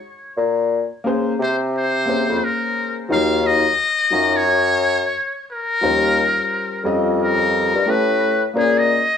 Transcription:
0.37 0.85 A#2 loud
1.04 1.31 A#3 medium
1.04 1.32 C#4 medium
1.04 1.32 G#4 medium
1.04 1.33 C5 medium
1.39 2.25 C3 medium
1.39 1.57 C5 medium
1.77 2.46 C5 loud
2.06 3.04 A#3 medium
2.06 3.04 C#4 medium
2.06 3.05 G#4 medium
2.06 3.06 C5 medium
2.29 2.40 F2 medium
2.44 2.99 A#4 medium
3.09 3.68 D#2 loud
3.09 3.17 F3 medium
3.09 3.61 D#4 medium
3.09 3.62 F4 medium
3.09 3.62 C#5 medium
3.13 3.64 F#3 medium
3.13 3.48 F5 loud
3.47 4.38 D#5 loud
4.10 5.11 F#2 medium
4.10 4.38 F#3 medium
4.10 4.38 D#4 medium
4.10 4.39 F4 medium
4.10 4.39 C#5 medium
4.36 5.37 C#5 loud
5.51 6.91 A#4 loud
5.81 6.30 D#2 loud
5.81 5.90 F3 soft
5.81 6.80 C#4 soft
5.81 6.80 F4 soft
5.81 6.81 C5 medium
5.88 6.82 G3 medium
6.84 7.71 F2 medium
6.84 7.82 G3 medium
6.84 7.82 C#4 medium
6.84 7.83 F4 medium
6.84 7.83 D#5 medium
7.21 7.91 A#4 medium
7.75 7.85 G2 medium
7.86 8.45 A2 loud
7.86 8.29 A3 medium
7.86 8.30 C#4 medium
7.86 8.30 G4 medium
7.86 8.31 B4 medium
7.90 8.44 B4 medium
8.54 9.03 A#2 loud
8.54 8.97 A#3 medium
8.54 8.98 C#4 soft
8.54 8.98 G#4 soft
8.54 8.80 G#4 medium
8.54 8.99 C5 medium
8.79 9.18 D#5 loud

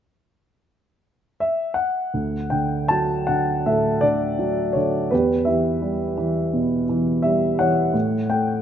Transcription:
1.40 1.74 E5 medium
1.74 2.53 F#5 medium
2.14 5.08 D2 soft
2.50 3.27 D3 soft
2.50 2.91 G5 medium
2.88 4.36 F#3 soft
2.88 3.29 A5 medium
3.27 4.01 D3 soft
3.27 3.67 F#5 medium
3.66 5.08 A2 soft
3.66 5.10 A4 soft
3.66 4.01 E5 medium
4.01 4.75 D3 soft
4.01 4.77 D5 medium
4.39 5.09 F#3 soft
4.73 5.11 D3 soft
4.73 5.12 C#5 medium
5.11 7.90 E2 soft
5.11 5.47 G4 soft
5.11 5.48 B4 medium
5.45 6.16 E3 soft
5.45 6.85 G4 soft
5.45 6.84 E5 medium
5.82 7.20 G3 soft
6.17 6.88 E3 soft
6.53 7.90 B2 soft
6.89 7.57 E3 soft
7.22 7.93 G3 soft
7.22 7.60 E5 medium
7.59 7.93 E3 soft
7.59 8.62 C#5 medium
7.59 8.26 F#5 medium
7.94 8.62 A2 soft
8.29 8.62 A3 soft
8.29 8.62 G5 medium

